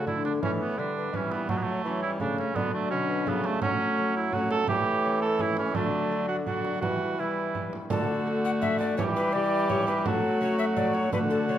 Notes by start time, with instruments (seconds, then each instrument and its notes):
Already playing: viola A3, recorder A4
0.06 bassoon D3, lute D3 D4 F#4, cor anglais E4, frame drum
0.25 cor anglais D4, frame drum
0.42 bassoon E3, lute E3, viola A3, cor anglais C#4, recorder C#5, frame drum
0.61 cor anglais B3
0.77 bassoon D3, lute D3 B3 E4, viola G3, cor anglais D4, recorder B4
0.97 recorder B4
1.13 lute E3 B3 E4, bassoon E3, viola G3, cor anglais C#4, frame drum
1.32 cor anglais B3, frame drum
1.49 bassoon F#3, lute F#3, viola F#3, cor anglais A3, recorder C#5, frame drum
1.57 cor anglais B3
1.63 cor anglais A3
1.84 bassoon E3, lute E3 A3 C#4, viola F#3, recorder C#5
2.02 viola G3, cor anglais E4
2.20 bassoon C#3, lute C#3 A3 C#4, viola A3, cor anglais D4, recorder A4, frame drum
2.38 cor anglais C#4, frame drum
2.55 bassoon D3, lute D3, viola F#3, cor anglais B3, recorder D5, frame drum
2.74 cor anglais A3
2.90 bassoon B2, lute B2 D3 A3, cor anglais C#4, recorder C#5
3.09 recorder B4
3.26 bassoon C#3, lute C#3 A3 D5, viola F#3, cor anglais B3, recorder A4, frame drum
3.44 cor anglais A3, frame drum
3.62 bassoon F#3, lute F#3, viola A3, cor anglais C#4, recorder C#5, frame drum
3.98 lute A3 C#4
4.16 cor anglais E4
4.33 viola A3, lute A3 C#4, cor anglais F#4, recorder C#5, frame drum
4.51 cor anglais A4, frame drum
4.68 bassoon E3, lute E3, viola A3, cor anglais G4, recorder C#5, frame drum
5.05 lute A3 C#4
5.22 cor anglais A4
5.39 lute A3 C#4, cor anglais E4, frame drum
5.57 cor anglais C#4, frame drum
5.75 bassoon D3, lute D3, viola F#3, cor anglais A3, recorder D5, frame drum
6.11 lute A3 D4 F#4
6.28 cor anglais F#4
6.46 viola F#3, lute A3 D4 F#4, cor anglais F#4, recorder D5, frame drum
6.65 frame drum
6.82 lute E3, bassoon E3, viola G3, cor anglais F#4, recorder B4, frame drum
7.18 viola G3, lute B3 E4, cor anglais E4, recorder B4
7.55 lute B3 E4, frame drum
7.73 frame drum
7.90 lute D3, bassoon D3, viola A3, cor anglais F#4, recorder A4, frame drum
8.27 lute F#4 A4
8.45 recorder F#5
8.62 lute F#4 A4, recorder E5, frame drum
8.79 recorder D5, frame drum
8.97 lute E3, bassoon E3, viola G3, cor anglais G4, recorder C#5, frame drum
9.16 recorder B4
9.33 lute E4 G4, recorder D5
9.70 lute E4 G4, recorder C#5, frame drum
9.88 recorder B4, frame drum
10.06 bassoon F#3, lute F#3, viola A3, cor anglais F#4, recorder A4, frame drum
10.40 lute A3 C#4 F#4, recorder C#5
10.59 recorder E5
10.76 lute A3 C#4 F#4, recorder D5, frame drum
10.94 recorder C#5, frame drum
11.12 bassoon D3, lute D3, viola A3, cor anglais F#4, recorder B4, frame drum
11.30 recorder A4
11.48 lute A3 D4 F#4, recorder C#5